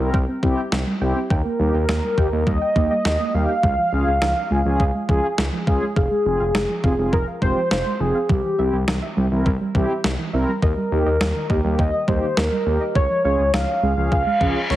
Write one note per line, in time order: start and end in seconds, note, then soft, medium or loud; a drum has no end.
0.00 0.11 C2 medium
0.00 0.17 C4 medium
0.00 0.17 E4 medium
0.00 0.17 A#4 medium
0.14 0.25 C2 loud
0.14 0.21 G5 medium
0.14 kick medium
0.28 0.36 C4 medium
0.43 0.54 C2 loud
0.43 0.50 G3 medium
0.43 0.61 C4 medium
0.43 0.61 E4 medium
0.43 0.61 G4 loud
0.43 kick medium
0.58 0.65 G5 medium
0.72 0.84 C2 loud
0.72 0.80 C4 medium
0.72 snare loud
0.87 0.94 G3 medium
1.01 1.13 C2 loud
1.01 1.19 C4 medium
1.01 1.19 E4 medium
1.01 1.19 G4 medium
1.01 1.09 G5 medium
1.16 1.23 C4 medium
1.30 1.42 D#2 loud
1.30 2.48 A#4 loud
1.30 1.38 G5 loud
1.30 kick loud
1.45 1.52 A#3 medium
1.59 1.71 D#2 loud
1.59 1.67 G3 medium
1.59 1.77 A#3 medium
1.59 1.77 D#4 medium
1.59 1.77 G4 medium
1.74 1.85 D#2 medium
1.74 1.82 G5 medium
1.89 2.00 D#2 loud
1.89 1.96 A#3 medium
1.89 snare medium
2.03 2.11 G3 medium
2.18 2.29 D#2 loud
2.18 2.27 A#3 medium
2.18 2.27 D#4 medium
2.18 2.27 G4 medium
2.18 2.25 G5 medium
2.18 kick medium
2.32 2.44 D#2 loud
2.32 2.50 A#3 medium
2.32 2.40 A#3 medium
2.32 2.50 D#4 medium
2.32 2.50 A#4 medium
2.47 2.58 D#2 loud
2.47 2.54 G3 medium
2.47 2.90 D#5 loud
2.47 kick medium
2.62 2.69 G5 medium
2.76 2.87 D#2 loud
2.76 2.94 A#3 medium
2.76 2.84 A#3 medium
2.76 2.94 D#4 medium
2.76 2.94 G4 medium
2.76 kick medium
2.91 2.98 G3 medium
2.91 3.36 D#5 loud
3.05 3.17 D#2 medium
3.05 3.13 G5 medium
3.05 snare loud
3.20 3.27 A#3 medium
3.34 3.46 D#2 medium
3.34 3.42 G3 medium
3.34 3.52 A#3 medium
3.34 3.52 D#4 medium
3.34 3.52 G4 medium
3.34 5.67 F5 loud
3.49 3.56 G5 medium
3.63 3.75 C#2 loud
3.63 3.71 G#3 medium
3.63 kick loud
3.78 3.85 F3 medium
3.93 4.04 C#2 loud
3.93 4.10 C#4 medium
3.93 4.10 F4 medium
3.93 4.10 G#4 medium
3.93 4.00 F5 medium
4.07 4.18 C#2 loud
4.22 4.33 C#2 loud
4.22 4.29 F3 medium
4.22 snare loud
4.36 4.44 F5 medium
4.51 4.62 C#2 loud
4.51 4.58 G#3 medium
4.51 4.60 C#4 medium
4.51 4.60 F4 medium
4.51 4.60 G#4 medium
4.65 4.77 C#2 loud
4.65 4.73 F3 medium
4.65 4.83 C#4 medium
4.65 4.83 F4 medium
4.65 4.83 G#4 medium
4.80 4.91 C#2 loud
4.80 4.87 F5 loud
4.80 kick medium
4.94 5.02 G#3 medium
5.09 5.20 C#2 loud
5.09 5.17 F3 medium
5.09 5.27 C#4 medium
5.09 5.27 F4 medium
5.09 5.27 G#4 loud
5.09 kick medium
5.24 5.31 F5 medium
5.38 5.50 C#2 loud
5.38 5.46 G#3 medium
5.38 snare loud
5.53 5.60 F3 medium
5.67 5.79 C#2 medium
5.67 5.85 C#4 medium
5.67 5.85 F4 medium
5.67 5.85 G#4 medium
5.67 5.75 F5 medium
5.67 kick medium
5.82 5.89 G#3 medium
5.96 6.08 F1 loud
5.96 7.09 G#4 loud
5.96 6.04 F5 loud
5.96 kick loud
6.11 6.18 G#3 medium
6.26 6.37 F1 loud
6.26 6.33 F3 medium
6.26 6.43 C4 medium
6.26 6.43 F4 medium
6.26 6.43 G#4 medium
6.40 6.51 F1 medium
6.40 6.48 F5 medium
6.55 6.66 F1 loud
6.55 6.62 G#3 medium
6.55 snare loud
6.69 6.77 F3 medium
6.84 6.95 F1 loud
6.84 6.93 C4 medium
6.84 6.93 F4 medium
6.84 6.93 G#4 medium
6.84 6.91 F5 medium
6.84 kick medium
6.98 7.10 F1 medium
6.98 7.06 G#3 medium
6.98 7.16 C4 medium
6.98 7.16 F4 medium
6.98 7.16 G#4 medium
7.13 7.24 F1 loud
7.13 7.20 F3 medium
7.13 7.26 A#4 loud
7.13 kick medium
7.28 7.35 F5 medium
7.42 7.53 F1 loud
7.42 7.50 G#3 medium
7.42 7.60 C4 medium
7.42 7.60 F4 medium
7.42 7.60 G4 medium
7.42 7.69 C5 loud
7.42 kick medium
7.57 7.64 F3 medium
7.71 7.83 F1 loud
7.71 8.02 C5 loud
7.71 7.79 F5 medium
7.71 snare loud
7.86 7.93 G#3 medium
8.00 8.12 F1 medium
8.00 8.08 F3 medium
8.00 8.18 C4 medium
8.00 8.18 F4 medium
8.00 8.31 G#4 loud
8.00 8.18 G#4 medium
8.15 8.22 F5 medium
8.29 8.41 C2 loud
8.29 8.37 G3 medium
8.29 9.17 G4 medium
8.29 kick loud
8.44 8.51 E3 medium
8.59 8.70 C2 loud
8.59 8.76 C4 medium
8.59 8.76 E4 medium
8.59 8.76 G4 medium
8.59 8.66 E5 medium
8.73 8.85 C2 loud
8.88 8.99 C2 loud
8.88 8.95 E3 medium
8.88 snare loud
9.02 9.10 E5 medium
9.17 9.28 C2 loud
9.17 9.24 G3 medium
9.17 9.26 C4 medium
9.17 9.26 E4 medium
9.17 9.26 G4 medium
9.31 9.43 C2 medium
9.31 9.39 E3 medium
9.31 9.49 C4 medium
9.31 9.49 E4 medium
9.31 9.49 A#4 medium
9.46 9.57 C2 loud
9.46 9.53 E5 loud
9.46 kick medium
9.61 9.68 G3 medium
9.75 9.86 C2 loud
9.75 9.83 E3 medium
9.75 9.93 C4 medium
9.75 9.93 E4 medium
9.75 9.93 G4 loud
9.75 kick medium
9.90 9.97 E5 medium
10.04 10.16 C2 loud
10.04 10.12 G3 medium
10.04 snare loud
10.19 10.26 E3 medium
10.33 10.45 C2 medium
10.33 10.51 C4 medium
10.33 10.51 E4 medium
10.33 10.51 A#4 loud
10.33 10.41 E5 medium
10.48 10.55 G3 medium
10.62 10.74 D#2 loud
10.62 11.81 A#4 loud
10.62 10.70 D#5 loud
10.62 kick loud
10.77 10.85 G3 medium
10.92 11.03 D#2 loud
10.92 10.99 D#3 medium
10.92 11.09 A#3 medium
10.92 11.09 D#4 medium
10.92 11.09 G4 medium
11.06 11.18 D#2 loud
11.06 11.14 D#5 medium
11.21 11.32 D#2 loud
11.21 11.28 G3 medium
11.21 snare loud
11.35 11.43 D#3 medium
11.50 11.61 D#2 loud
11.50 11.59 A#3 medium
11.50 11.59 D#4 medium
11.50 11.59 G4 loud
11.50 11.57 D#5 medium
11.50 kick medium
11.64 11.76 D#2 medium
11.64 11.72 G3 medium
11.64 11.82 A#3 medium
11.64 11.82 D#4 medium
11.64 11.82 G4 medium
11.79 11.90 D#2 loud
11.79 11.86 D#3 medium
11.79 12.10 D#5 loud
11.79 kick medium
11.94 12.01 D#5 medium
12.08 12.19 D#2 loud
12.08 12.16 G3 medium
12.08 12.26 A#3 medium
12.08 12.26 D#4 medium
12.08 12.26 G4 medium
12.08 12.39 C5 medium
12.08 kick medium
12.23 12.30 D#3 medium
12.37 12.49 D#2 medium
12.37 12.95 A#4 loud
12.37 12.45 D#5 medium
12.37 snare loud
12.52 12.59 G3 medium
12.66 12.78 D#2 medium
12.66 12.74 D#3 medium
12.66 12.84 A#3 medium
12.66 12.84 D#4 medium
12.66 12.84 G4 medium
12.81 12.88 D#5 medium
12.95 13.07 C#2 loud
12.95 13.03 G#3 medium
12.95 13.23 C#5 loud
12.95 kick loud
13.10 13.17 F3 medium
13.25 13.36 C#2 loud
13.25 13.42 C#4 medium
13.25 13.42 F4 medium
13.25 13.42 G#4 medium
13.25 13.52 C#5 medium
13.25 13.32 F5 medium
13.39 13.50 C#2 medium
13.54 13.65 C#2 loud
13.54 13.61 F3 medium
13.54 14.66 F5 loud
13.54 snare loud
13.68 13.76 F5 medium
13.83 13.94 C#2 medium
13.83 13.90 G#3 medium
13.83 13.92 C#4 medium
13.83 13.92 F4 medium
13.83 13.92 G#4 medium
13.97 14.09 C#2 medium
13.97 14.05 F3 medium
13.97 14.15 C#4 medium
13.97 14.15 F4 medium
13.97 14.15 G#4 medium
14.12 14.23 C#2 loud
14.12 14.19 F5 loud
14.12 kick medium
14.12 reverse cymbal medium
14.27 14.34 G#3 medium
14.41 14.52 C#2 loud
14.41 14.49 F3 medium
14.41 14.59 C#4 medium
14.41 14.59 F4 medium
14.41 14.59 G#4 loud
14.41 kick medium
14.56 14.63 F5 medium
14.70 14.76 C#2 loud
14.70 14.76 G#3 medium
14.70 14.76 C#5 medium
14.70 snare medium